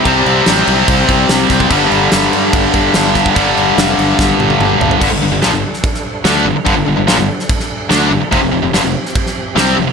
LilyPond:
<<
  \new Staff \with { instrumentName = "Tonewheel organ" } { \time 4/4 \key c \major \tempo 4 = 145 <c' g' d''>1 | <g d' a'>1~ | <g d' a'>1 | <g d' a'>1~ |
<g d' a'>1 | <f c' g'>1 | }
  \new Staff \with { instrumentName = "Distorted electric guitar" } { \clef bass \time 4/4 \key c \major <c g c'>1 | <g, d g>1 | <g, d g>1 | <g, d>16 <g, d>16 <g, d>16 <g, d>16 <bes, f>16 <g, d>16 r4. <d a d'>8 <g, d>16 r16 |
<g, d>16 <g, d>16 <g, d>16 <g, d>16 <bes, f>16 <g, d>16 r4. <d a d'>8 <g, d>16 r16 | <f, c>16 <f, c>16 <f, c>16 <f, c>16 <g, d>16 <f, c>16 r4. <c g c'>8 <f, c>16 r16 | }
  \new Staff \with { instrumentName = "Distorted electric guitar" } { \clef bass \time 4/4 \key c \major <c g c'>1 | <g, d g>1 | <g, d g>1 | <g, d>16 <g, d>16 <g, d>16 <g, d>16 <bes, f>16 <g, d>16 r4. <d a d'>8 <g, d>16 r16 |
<g, d>16 <g, d>16 <g, d>16 <g, d>16 <bes, f>16 <g, d>16 r4. <d a d'>8 <g, d>16 r16 | <f, c>16 <f, c>16 <f, c>16 <f, c>16 <g, d>16 <f, c>16 r4. <c g c'>8 <f, c>16 r16 | }
  \new Staff \with { instrumentName = "Fingered electric bass" } { \clef bass \time 4/4 \key c \major c,8 c,8 a,,8 c,8 c,8 c,8 c,8 c,8 | g,,8 g,,8 g,,8 g,8 g,,8 g,,8 g,,4 | g,,8 g,,8 f,,8 g,,8 g,,8 g,,8 g,,8 g,,8 | g,,16 g,,16 g,,16 g,,16 bes,,16 g,,16 r4. d,8 g,,16 r16 |
g,,16 g,,16 g,,16 g,,16 bes,,16 g,,16 r4. d,8 g,,16 r16 | f,,16 f,,16 f,,16 f,,16 g,,16 f,,16 r4. c,8 f,,16 r16 | }
  \new DrumStaff \with { instrumentName = "Drums" } \drummode { \time 4/4 <cymc bd>8 cymc8 <cymc sn>8 cymc8 <cymc bd>8 <cymc bd>8 <cymc sn>8 <cymc bd sn>16 bd16 | <cymc bd>8 cymc8 <cymc sn>8 cymc8 <cymc bd>8 <cymc bd>8 <cymc sn>8 <cymc bd sn>16 bd16 | <cymc bd>8 cymc8 <cymc sn>8 cymc8 <bd sn>8 tommh16 tommh16 toml8 tomfh16 tomfh16 | <cymc bd>4 <cymc sn>8. sn16 <cymc bd>16 sn8. <cymc sn>4 |
<cymc bd>4 <cymc sn>8. sn16 <cymc bd>16 sn8. <cymc sn>4 | <cymc bd>4 <cymc sn>8. sn16 <cymc bd>16 sn8. <cymc sn>4 | }
>>